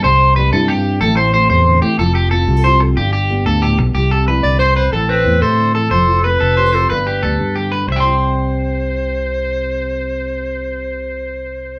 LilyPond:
<<
  \new Staff \with { instrumentName = "Clarinet" } { \time 12/8 \key c \major \tempo 4. = 122 r1. | r1. | r4. d''8 c''8 c''8 a'8 b'4 a'4 a'8~ | a'4 b'4. a'8 b'2 r4 |
c''1.~ | c''1. | }
  \new Staff \with { instrumentName = "Clean electric guitar" } { \time 12/8 \key c \major c''4 b'8 a'8 g'4 a'8 c''8 c''8 c''4 g'8 | a'8 g'8 a'4 c''8 r8 g'8 g'4 a'8 g'8 r8 | g'8 a'8 b'4 c''8 b'8 a'8 c'4 c''4 a'8 | c''4 b'8 a'8 c''8 c''8 b'8 g'8 a'4 g'8 b'8 |
<e'' g'' c'''>1.~ | <e'' g'' c'''>1. | }
  \new Staff \with { instrumentName = "Steel-string acoustic guitar" } { \time 12/8 \key c \major << { r4 c'8 e'8 c'4 <a c' e' a'>4 c'2 | <c' f'>4 f'8 g'16 a'16 f'8 a'8 r4 b2 | <c' g'>8 g'8 e'2 <c' e'>8 a'8 e'2 | f'8 f'8 a'4 g'16 a'16 f'8 <b d'>8 d'8 d'4 b'8 b8 |
<g c' e' g'>1.~ | <g c' e' g'>1. | } \\ { c4 g4 g,4 a,4 a8 c8 d8 e8 | f4 c'4 c4 g,4 g8 g,8 a,8 b,8 | c4 g8 d8 c8 b,8 a,4 a8 c8 d8 e8 | f4 c'4 c4 g,4 g4 d4 |
c1.~ | c1. | } >> }
  \new Staff \with { instrumentName = "Fingered electric bass" } { \clef bass \time 12/8 \key c \major c,4. g,4. a,,4. e,4 a,8 | f,,4. c,4. g,,4. d,4 b,,8 | c,4. c,4. a,,4 e,8 a,4. | f,,4. f,,4. g,,4 d,8 g,4. |
c,1.~ | c,1. | }
>>